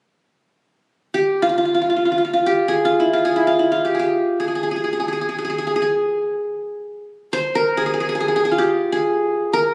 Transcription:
1.14 2.40 G4 medium
1.42 1.49 F4 medium
1.49 1.57 F4 soft
1.58 1.65 F4 soft
1.65 1.74 F4 soft
1.74 1.81 F4 soft
1.82 1.89 F4 soft
1.90 1.96 F4 soft
1.97 2.05 F4 soft
2.05 2.11 F4 soft
2.12 2.18 F4 soft
2.18 2.24 F4 soft
2.25 2.33 F4 soft
2.33 2.85 F4 soft
2.46 2.74 G4 medium
2.68 3.25 G#4 medium
2.85 3.06 F4 medium
3.00 3.19 E4 medium
3.13 3.42 F4 medium
3.25 3.91 G#4 medium
3.36 3.53 E4 medium
3.47 3.65 F4 medium
3.59 3.78 E4 medium
3.72 5.06 F4 medium
3.85 3.99 G4 medium
3.95 4.05 G#4 medium
3.99 4.46 G4 medium
4.40 4.48 G#4 medium
4.48 4.55 G#4 soft
4.55 4.63 G#4 soft
4.63 4.71 G#4 soft
4.71 4.76 G#4 soft
4.76 4.84 G#4 soft
4.84 4.92 G#4 soft
4.93 4.99 G#4 soft
5.00 5.08 G#4 soft
5.08 5.12 G#4 soft
5.13 5.21 G#4 soft
5.21 5.28 G#4 soft
5.29 5.38 G#4 soft
5.38 5.44 G#4 soft
5.45 5.49 G#4 soft
5.50 5.58 G#4 soft
5.58 5.66 G#4 soft
5.67 5.75 G#4 soft
5.76 5.82 G#4 soft
5.82 7.03 G#4 soft
7.33 8.39 C5 medium
7.55 8.68 A#4 medium
7.77 7.86 G#4 medium
7.86 7.93 G#4 soft
7.94 8.00 G#4 soft
8.00 8.08 G#4 soft
8.09 8.15 G#4 soft
8.15 8.20 G#4 soft
8.20 8.28 G#4 soft
8.28 8.36 G#4 soft
8.36 8.45 G#4 medium
8.45 8.64 G#4 medium
8.52 9.74 F4 soft
8.58 8.98 G4 medium
8.92 9.74 G#4 medium
9.53 9.74 A#4 medium

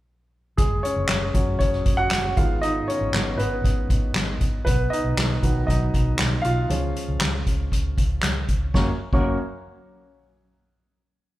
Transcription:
0.57 0.79 F#1 medium
0.57 0.83 G#3 medium
0.57 0.84 G#4 medium
0.57 kick medium
0.57 closed hi-hat medium
0.83 1.34 C#4 medium
0.83 1.57 C#5 medium
0.83 closed hi-hat medium
0.96 1.07 F#1 medium
1.09 1.30 F#1 medium
1.09 snare medium
1.09 clap medium
1.09 closed hi-hat medium
1.34 1.56 F#1 medium
1.34 2.07 F#3 soft
1.34 2.08 G#3 soft
1.34 1.60 C#4 soft
1.34 kick medium
1.34 closed hi-hat medium
1.59 1.81 F#1 medium
1.59 1.96 C#4 soft
1.59 1.99 C#5 medium
1.59 kick medium
1.59 closed hi-hat medium
1.72 snare soft
1.86 2.07 F#1 medium
1.86 kick medium
1.86 closed hi-hat medium
1.97 2.35 F#4 medium
1.97 2.37 F#5 medium
2.11 2.32 F#1 medium
2.11 snare medium
2.11 clap medium
2.11 closed hi-hat medium
2.37 2.79 G#1 medium
2.37 2.71 D#3 soft
2.37 2.71 G#3 soft
2.37 2.72 B3 soft
2.37 2.61 F4 medium
2.37 2.63 F5 medium
2.37 kick medium
2.37 closed hi-hat medium
2.62 2.87 D#4 medium
2.62 2.86 D#5 medium
2.62 closed hi-hat medium
2.88 3.36 C#4 medium
2.88 3.35 C#5 medium
2.88 closed hi-hat medium
3.01 3.11 G#1 medium
3.13 3.34 G#1 loud
3.13 3.36 D#3 soft
3.13 3.37 G#3 soft
3.13 3.37 B3 soft
3.13 snare loud
3.13 clap medium
3.13 closed hi-hat medium
3.38 3.60 G#1 medium
3.38 3.87 B3 medium
3.38 3.86 B4 medium
3.38 closed hi-hat medium
3.64 3.85 G#1 medium
3.64 kick medium
3.64 closed hi-hat medium
3.90 4.11 G#1 medium
3.90 kick medium
3.90 closed hi-hat medium
4.15 4.37 G#1 medium
4.15 snare loud
4.15 clap medium
4.15 closed hi-hat medium
4.41 4.62 G#1 medium
4.41 kick medium
4.41 closed hi-hat medium
4.65 4.87 B1 medium
4.65 4.90 B3 medium
4.65 4.89 B4 medium
4.65 kick loud
4.65 closed hi-hat medium
4.90 5.65 D#4 medium
4.90 5.63 D#5 medium
4.90 closed hi-hat medium
5.04 5.15 B1 medium
5.17 5.38 B1 medium
5.17 snare medium
5.17 clap medium
5.17 closed hi-hat medium
5.43 5.64 B1 medium
5.43 5.76 D#3 soft
5.43 5.77 F#3 soft
5.43 5.77 B3 soft
5.43 kick medium
5.43 closed hi-hat medium
5.67 5.89 B1 medium
5.67 6.42 D#4 medium
5.67 6.40 D#5 medium
5.67 kick medium
5.67 closed hi-hat medium
5.94 6.15 B1 medium
5.94 kick medium
5.94 closed hi-hat medium
6.19 6.40 B1 medium
6.19 snare loud
6.19 clap medium
6.19 closed hi-hat medium
6.42 6.66 B1 medium
6.42 8.19 F4 medium
6.42 8.18 F5 medium
6.42 closed hi-hat medium
6.69 6.91 C#2 medium
6.69 7.42 F3 soft
6.69 7.43 G#3 soft
6.69 7.43 C#4 medium
6.69 closed hi-hat medium
6.96 closed hi-hat medium
7.08 7.19 C#2 medium
7.21 7.42 C#2 loud
7.21 snare medium
7.21 clap medium
7.21 closed hi-hat medium
7.47 7.68 C#2 medium
7.47 kick medium
7.47 closed hi-hat medium
7.72 7.93 C#2 medium
7.72 kick medium
7.72 closed hi-hat medium
7.97 8.18 C#2 medium
7.97 kick medium
7.97 closed hi-hat medium
8.23 8.44 C#2 medium
8.23 snare loud
8.23 clap medium
8.23 closed hi-hat medium
8.48 8.69 C#2 medium
8.48 kick medium
8.48 closed hi-hat medium
8.74 8.88 F#1 medium
8.74 8.88 F#2 medium
8.74 8.89 A#3 medium
8.74 8.89 C#4 medium
8.74 8.89 F#4 medium
8.74 8.89 C#5 medium
8.74 kick medium
8.74 snare medium
9.12 9.36 F#1 medium
9.12 9.37 F#2 medium
9.12 9.37 A#3 medium
9.12 9.36 C#4 medium
9.12 9.37 F#4 medium
9.12 9.37 C#5 medium
9.12 kick medium
9.12 crash medium

